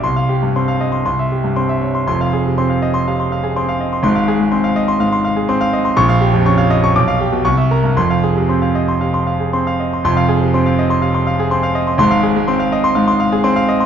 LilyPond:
<<
  \new Staff \with { instrumentName = "Grand piano" } { \time 4/4 \key f \minor \tempo 4 = 122 << { c'''8 r4. c'''8 r4. | c'''8 r2. r8 | c'''8 r2. r8 | des'''8 r4. d'''8 r8 des'''8 r8 |
c'''8 r2. r8 | c'''8 r2. r8 | c'''8 r2. r8 | } \\ { r16 f''16 g'16 g,16 c'''16 f''16 ees''16 c'''16 r16 e''16 g'16 g,16 c'''16 e''16 des''16 c'''16 | r16 f''16 aes'16 c16 c'''16 f''16 ees''16 c'''16 f''16 c'''16 f''16 aes'16 c'''16 f''16 ees''16 c'''16 | r16 f''16 aes'16 aes16 c'''16 f''16 ees''16 c'''16 f''16 c'''16 f''16 aes'16 c'''16 f''16 ees''16 c'''16 | r16 f''16 g'16 f,16 des'''16 f''16 ees''16 des'''16 r16 f''16 g'16 b,16 r16 e''16 bes'16 g,16 |
r16 f''16 aes'16 c16 c'''16 f''16 ees''16 c'''16 f''16 c'''16 f''16 aes'16 c'''16 f''16 ees''16 c'''16 | r16 f''16 aes'16 c16 c'''16 f''16 ees''16 c'''16 f''16 c'''16 f''16 aes'16 c'''16 f''16 ees''16 c'''16 | r16 f''16 aes'16 aes16 c'''16 f''16 ees''16 c'''16 f''16 c'''16 f''16 aes'16 c'''16 f''16 ees''16 c'''16 | } >> }
  \new Staff \with { instrumentName = "Grand piano" } { \clef bass \time 4/4 \key f \minor c,4 c'8 r8 c,4 c'8 r8 | <f,, f,>4 c'8 r8 c8 r8 c'8 r8 | <aes,, aes,>4 c'8 r8 aes,4 c'8 r8 | bes,,4 des'8 r8 b,,4 c,4 |
<f,, f,>4 c'8 r8 c8 r8 c'8 r8 | <f,, f,>4 c'8 r8 c8 r8 c'8 r8 | <aes,, aes,>4 c'8 r8 aes,4 c'8 r8 | }
>>